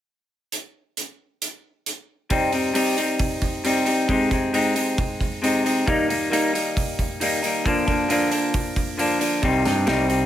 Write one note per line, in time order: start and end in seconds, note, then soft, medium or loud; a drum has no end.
0.52 closed hi-hat soft
0.97 closed hi-hat soft
1.42 closed hi-hat medium
1.86 closed hi-hat soft
2.30 2.73 C3 medium
2.30 2.54 G3 medium
2.30 2.53 C4 medium
2.30 2.52 D#4 loud
2.30 kick medium
2.30 open hi-hat medium
2.52 2.73 G3 soft
2.52 2.75 C4 medium
2.52 2.76 D#4 medium
2.52 open hi-hat soft
2.74 3.63 C3 medium
2.74 2.98 G3 medium
2.74 2.98 C4 medium
2.74 2.96 D#4 medium
2.74 open hi-hat medium
2.97 3.64 G3 soft
2.97 3.65 C4 soft
2.97 3.66 D#4 medium
2.97 open hi-hat soft
3.19 kick medium
3.19 open hi-hat medium
3.42 kick medium
3.42 open hi-hat medium
3.64 4.07 C3 medium
3.64 3.87 G3 medium
3.64 3.86 C4 medium
3.64 3.85 D#4 medium
3.64 open hi-hat medium
3.85 4.08 G3 soft
3.85 4.08 C4 medium
3.85 4.10 D#4 medium
3.85 open hi-hat soft
4.08 4.52 C3 medium
4.08 4.32 G#3 medium
4.08 4.31 C4 medium
4.08 4.30 D#4 loud
4.08 kick loud
4.08 open hi-hat medium
4.31 4.52 G#3 soft
4.31 4.53 C4 medium
4.31 4.55 D#4 medium
4.31 kick medium
4.31 open hi-hat soft
4.53 4.98 C3 medium
4.53 4.76 G#3 medium
4.53 4.75 C4 medium
4.53 4.75 D#4 medium
4.53 open hi-hat medium
4.75 5.42 G#3 soft
4.75 5.42 C4 soft
4.75 5.43 D#4 medium
4.75 open hi-hat soft
4.98 kick medium
4.98 open hi-hat medium
5.21 kick medium
5.21 open hi-hat soft
5.42 5.85 C3 medium
5.42 5.65 G#3 medium
5.42 5.64 C4 medium
5.42 5.63 D#4 medium
5.42 open hi-hat soft
5.64 5.87 G#3 soft
5.64 5.86 C4 medium
5.64 5.86 D#4 medium
5.64 open hi-hat soft
5.86 6.29 D#3 medium
5.86 6.10 G3 medium
5.86 6.10 A#3 medium
5.86 6.08 D#4 loud
5.86 kick loud
5.86 open hi-hat medium
6.09 6.30 G3 medium
6.09 6.32 A#3 medium
6.09 6.32 D#4 medium
6.09 open hi-hat medium
6.30 6.76 D#3 medium
6.30 6.54 G3 medium
6.30 6.54 A#3 medium
6.30 6.52 D#4 medium
6.30 open hi-hat medium
6.53 7.20 G3 soft
6.53 7.21 A#3 medium
6.53 7.21 D#4 medium
6.53 open hi-hat soft
6.77 kick loud
6.77 open hi-hat medium
6.99 kick medium
6.99 open hi-hat soft
7.20 7.64 D#3 medium
7.20 7.44 G3 medium
7.20 7.43 A#3 medium
7.20 7.41 D#4 medium
7.20 open hi-hat medium
7.43 7.65 G3 soft
7.43 7.64 A#3 medium
7.43 7.64 D#4 medium
7.43 open hi-hat soft
7.64 8.07 A#2 medium
7.64 8.08 D3 medium
7.64 7.88 F3 medium
7.64 7.87 A#3 medium
7.64 7.85 D4 medium
7.64 kick medium
7.64 open hi-hat medium
7.86 8.09 F3 medium
7.86 8.10 A#3 medium
7.86 8.10 D4 medium
7.86 kick medium
7.86 open hi-hat medium
8.08 8.54 A#2 medium
8.08 8.54 D3 medium
8.08 8.32 F3 medium
8.08 8.31 A#3 medium
8.08 8.30 D4 medium
8.08 open hi-hat medium
8.31 8.97 F3 soft
8.31 8.98 A#3 medium
8.31 8.99 D4 medium
8.31 open hi-hat soft
8.54 kick loud
8.54 open hi-hat medium
8.76 kick medium
8.76 open hi-hat soft
8.97 9.41 D3 medium
8.97 9.21 F3 medium
8.97 9.20 A#3 medium
8.97 9.18 D4 medium
8.97 open hi-hat medium
9.20 9.43 F3 medium
9.20 9.42 A#3 soft
9.20 9.41 D4 medium
9.20 open hi-hat soft
9.42 9.65 C2 medium
9.42 9.86 C3 medium
9.42 9.66 G3 medium
9.42 9.66 C4 medium
9.42 9.65 D#4 medium
9.42 kick loud
9.42 open hi-hat medium
9.65 9.87 G2 medium
9.65 9.86 G3 medium
9.65 9.87 C4 medium
9.65 9.88 D#4 medium
9.65 snare soft
9.65 open hi-hat soft
9.86 10.26 C2 medium
9.86 10.26 C3 medium
9.86 10.10 G3 medium
9.86 10.09 C4 medium
9.86 10.08 D#4 medium
9.86 snare medium
9.86 open hi-hat soft
10.08 10.26 G3 soft
10.08 10.26 C4 medium
10.08 10.26 D#4 medium
10.08 open hi-hat soft